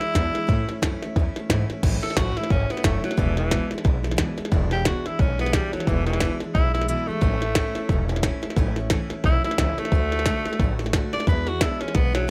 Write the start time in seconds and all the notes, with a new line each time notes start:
Already playing: E4
0.00 E3 G#3 D4 E4, muted upright bass stroke, snare
0.14 E2 B2 E3 G#3 D4 E4, kick, snare, hi-hat pedal
0.33 E3 G#3 D4 E4, muted upright bass stroke, snare
0.47 A2 E3 A3 C#4 E4, kick, snare
0.68 A3 C#4 E4, muted upright bass stroke, snare
0.82 F#2 A2 E3 A3 C#4 E4, kick, snare, hi-hat pedal
1.02 A3 C#4 E4, muted upright bass stroke, snare
1.16 E2 E3 A3 C#4 E4, kick, snare
1.36 A3 C#4 E4, muted upright bass stroke, snare
1.50 G#2 A2 E3 A3 C#4 E4, kick, snare, hi-hat pedal
1.70 A3 C#4 E4, muted upright bass stroke, snare
1.83 A1 A2 E3 A3 C#4 E4, kick, snare, crash
2.03 C#4 E4 A4, muted upright bass stroke, snare
2.07 A3, snare
2.17 A1 A2 E3 A3 C#4 F#4, kick, snare, hi-hat pedal
2.21 E4
2.37 A3 C#4 E4, muted upright bass stroke, snare
2.44 snare
2.50 G#1 E3 A3 C#4 E4, kick, snare
2.70 A3 B3 C#4 E4, muted upright bass stroke, snare
2.77 snare
2.83 F#1 A2 E3 A3 C#4 E4, kick, snare, hi-hat pedal
3.03 F#3 A3 C#4 E4, muted upright bass stroke, snare
3.11 snare
3.17 E1 E2 B2 E3 G#3 D4 E4, kick, snare
3.37 E3 G#3 D4 E4, snare
3.51 E2 B2 E3 G#3 D4 E4, kick, snare, hi-hat pedal
3.71 E3 G#3 D4 E4, muted upright bass stroke, snare
3.78 snare
3.84 B1 E3 G#3 D4 E4, kick, snare
4.03 E3 G#3 D4 E4, snare
4.11 snare
4.17 E2 B2 E3 G#3 D4 E4, kick, snare, hi-hat pedal
4.37 E3 G#3 D4 E4, muted upright bass stroke, snare
4.45 snare
4.51 E1 E2 B2 E3 G#3 D4 E4, kick, snare
4.71 E3 G#3 D4 E4 G4, snare
4.85 E2 B2 E3 G#3 D4 E4 F#4, kick, snare, hi-hat pedal
5.05 E3 G#3 D4 E4, muted upright bass stroke, snare
5.19 B1 E3 G#3 C#4 D4 E4, kick, snare
5.39 E3 G#3 B3 D4 E4, snare
5.46 snare
5.53 E2 B2 E3 G3 G#3 D4 E4, kick, snare, hi-hat pedal
5.73 F#3 G#3 D4 E4, muted upright bass stroke, snare
5.77 E3, snare
5.87 E1 E2 B2 E3 G#3 D4 E4, kick, snare
6.06 E3 G#3 D4 E4, snare
6.13 snare
6.20 E2 B2 E3 G#3 D4, kick, snare, hi-hat pedal
6.25 E4
6.40 E3 G#3 D4 E4, muted upright bass stroke, snare
6.54 B1 E3 G#3 D4 E4, kick, snare
6.74 E3 G#3 D4 E4, snare
6.82 snare
6.88 E2 B2 E3 G#3 D4 E4, hi-hat pedal
7.07 E3 G#3 A3 D4 E4, muted upright bass stroke
7.21 A1 A2 E3 A3 C#4 E4, kick, snare
7.40 A3 C#4 E4, snare
7.55 A2 E3 A3 C#4 E4, kick, snare, hi-hat pedal
7.75 A3 C#4 E4, muted upright bass stroke, snare
7.89 E1 E3 A3 C#4 E4, kick, snare
8.08 A3 C#4 E4, snare
8.16 snare
8.23 A2 E3 A3 C#4 E4, kick, snare, hi-hat pedal
8.42 A3 C#4 E4, muted upright bass stroke, snare
8.50 snare
8.56 A1 A2 E3 A3 C#4 E4, kick, snare
8.76 A3 C#4 E4, snare
8.90 A2 E3 A3 C#4 E4, kick, snare, hi-hat pedal
9.10 A3 C#4 E4, muted upright bass stroke, snare
9.24 B1 E3 A3 C#4 E4, kick, snare
9.44 A3 C#4 E4, muted upright bass stroke, snare
9.51 snare
9.58 C#2 A2 E3 A3 C#4 E4, kick, snare, hi-hat pedal
9.78 A3 C#4 E4, muted upright bass stroke, snare
9.82 A3, snare
9.92 D2 D3 A3 D4 F#4, kick, snare
10.12 A3 D4 F#4, snare
10.19 snare
10.26 D3 A3 D4 F#4, kick, snare, hi-hat pedal
10.46 D4 F#4, muted upright bass stroke, snare
10.50 A3, snare
10.59 A1 D3 A3 D4, kick, snare
10.64 F#4
10.79 D4 F#4, snare
10.84 A3, snare
10.93 D3 A3 D4 F#4, kick, snare, hi-hat pedal
11.13 A3 D4 F#4 D5, muted upright bass stroke, snare
11.20 snare
11.27 E2 B2 E3 G#3 D4 E4 B4, kick, snare
11.47 E3 G#3 D4 E4 F#4, snare
11.61 E2 B2 E3 G#3 D4 E4, kick, snare, hi-hat pedal
11.81 E3 G#3 C#4 D4 E4, muted upright bass stroke, snare
11.88 snare
11.94 B1 E3 G#3 B3 D4 E4, kick, snare
12.13 E3 F#3 G#3 D4 E4, snare